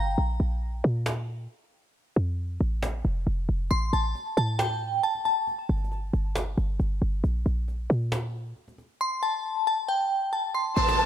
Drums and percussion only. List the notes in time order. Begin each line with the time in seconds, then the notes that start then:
1.06 cajon slap
2.83 cajon slap
3.71 cajon slap
3.93 cajon slap
4.15 cajon slap
4.37 cajon slap
4.59 cajon slap
5.03 cajon slap
5.15 cajon slap
5.25 cajon slap
5.47 cajon slap
5.69 cajon slap
5.77 cajon slap
5.84 cajon slap
5.92 cajon slap
6.14 cajon slap
6.36 cajon slap
6.57 cajon slap
6.80 cajon slap
7.24 cajon slap
7.46 cajon slap
7.68 cajon slap
7.90 cajon slap
8.12 cajon slap
8.56 cajon slap
8.68 cajon slap
8.78 cajon slap
10.77 cajon slap
10.88 cajon slap
10.99 cajon slap